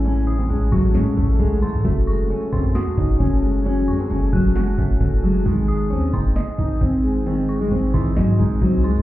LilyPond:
<<
  \new Staff \with { instrumentName = "Synth bell" } { \time 4/4 \key fis \dorian \tempo 4 = 133 r8 dis'''4 cis'''2 bis''8 | r8 cis'''4 bis''8 dis'''4 r4 | r8 cis'''4 fis'''2~ fis'''8 | r8 dis'''4 bis''8 dis'''4 r4 |
r8 cis'''4 bis''2 bis''8 | }
  \new Staff \with { instrumentName = "Ambient pad" } { \time 4/4 \key fis \dorian << { <cis' fis''>1 | <fis' gis''>1~ | <fis' gis''>1 | <dis' gis''>1~ |
<dis' gis''>1 | } \\ { a''1~ | a''1~ | a''1 | bis1~ |
bis1 | } >> }
  \new Staff \with { instrumentName = "Felt piano" } { \time 4/4 \key fis \dorian <a, e gis a cis'>8 e8 gis8 a8 cis'8 a8 gis8 e8 | fis8 gis8 a8 cis'8 fis'8 cis'8 a8 gis8 | fis8 gis8 a8 cis'8 fis'8 cis'8 a8 gis8 | dis8 gis8 bis8 dis'8 dis''8 dis'8 bis8 gis8 |
dis8 gis8 bis8 dis'8 dis''8 dis'8 bis8 gis8 | }
  \new Staff \with { instrumentName = "Nylon-string guitar" } { \time 4/4 \key fis \dorian cis'8. bis16 cis'8 fis8 gis8 a8 gis8 a8 | a4 cis'8 bis8 r8 dis'8 cis'4 | cis'8. bis16 cis'8 fis8 gis8 a4 fis8 | gis4 cis'8 bis8 r8 dis'8 bis4 |
bis8. gis16 bis8 e8 fis8 gis8 fis8 gis8 | }
  \new Staff \with { instrumentName = "808-style bass" } { \clef bass \time 4/4 \key fis \dorian a,,4 a,,8 a,,8 a,8 a,,8 cis,8. a,16 | fis,,4 r8 fis,8. cis,16 fis,,8 fis,,4~ | fis,,8 fis,8 fis,,8 fis,,4 fis,,8 fis,,4 | gis,,4 dis,8 fis,,8 r8 gis,,8 gis,,4~ |
gis,,4 gis,,8 gis,,8 gis,8 gis,,8 bis,,8. gis,16 | }
  \new DrumStaff \with { instrumentName = "Drums" } \drummode { \time 4/4 hh8 hh8 \tuplet 3/2 { hh16 hh16 hh16 <hh bd>16 r16 r16 } <hh sn>8 bd8 <hh bd>8 hh16 hh16 | <hh bd>8 hho8 hh16 hh16 <hh bd>32 hh32 hh32 hh32 <hh sn>8 <hh bd>8 <hh bd>8 hh8 | hh8 hho8 hh8 <hh bd>8 <hh sn>8 bd8 <hh bd>8 hh32 hh32 hh32 hh32 | <hh bd>8 hho8 hh16 hh16 <hh bd>32 hh32 hh32 hh32 <hh sn>8 <hh bd>8 <hh bd>8 hh8 |
hh8 hh8 \tuplet 3/2 { hh16 hh16 hh16 <hh bd>16 r16 r16 } <hh sn>8 bd8 <hh bd>8 hh16 hh16 | }
>>